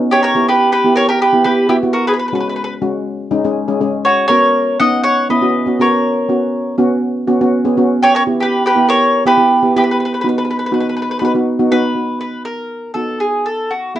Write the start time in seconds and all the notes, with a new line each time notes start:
0.11 G4 C#5
0.23 A#4 C#5
0.35 B3 E4 G4
0.48 G4 B4
0.72 G4 B4
0.84 B3 E4 G4
0.96 A#4 C#5
1.09 G4 A#4
1.22 G4 B4
1.33 B3 E4 G4
1.44 B3 E4 G4 B4
1.69 B3 E4 F#4 G4
1.83 B3 E4 F#4
1.93 F#4 A#4
2.07 G#4 B4
2.14 B4
2.20 B4
2.28 B4
2.33 G#3 C#4 F#4 B4
2.41 B4
2.49 B4
2.56 B4
2.64 B4
2.82 G#3 C#4 F#4
3.31 G#3 C#4 D#4
3.44 G#3 C#4 G#4
3.68 G#3 C#4 G#4
3.81 G#3 C#4 G#4
4.05 F#4 C#5
4.28 B3 C#4 F#4 A#4 C#5
4.80 B3 C#4 D#4 D#5 F#5
5.03 C#5 F#5
5.29 B3 C#4 E4 B4 D#5
5.41 B3 C#4 F#4
5.66 B3 C#4 F#4
5.79 B3 C#4 F#4 A#4 C#5
6.29 B3 C#4 F#4
6.78 B3 C#4 F#4
7.27 B3 C#4 F#4
7.41 B3 C#4 F#4
7.65 B3 C#4 G#4
7.77 B3 C#4 F#4
8.02 G4 C#5
8.15 A#4 C#5
8.27 B3 E4 G4
8.40 G4 B4
8.66 G4 B4
8.76 B3 E4 G4
8.88 A#4 C#5
9.25 B3 E4 G4 B4
9.37 B3 E4 G4
9.63 B3 E4 G4
9.76 B3 E4 G4 B4
9.84 B4
9.91 B4
10.00 B4
10.05 B4
10.14 B4
10.21 B3 D#4 F#4 B4
10.29 B4
10.38 B4
10.45 B4
10.51 B4
10.59 B4
10.66 B4
10.72 B3 D#4 F#4 B4
10.80 B4
10.89 B4
10.97 B4
11.02 B4
11.11 B4
11.19 B3 D#4 F#4 B4
11.25 B4
11.35 B3 D#4 F#4
11.59 B3 D#4 F#4
11.71 B3 D#4 F#4 B4
11.95 B3 D#4 F#4
12.21 B4
12.45 A#4
12.94 B3 D#4 F#4 A4
13.20 G#4
13.45 A4
13.70 F#4
13.95 B3 E4 G#4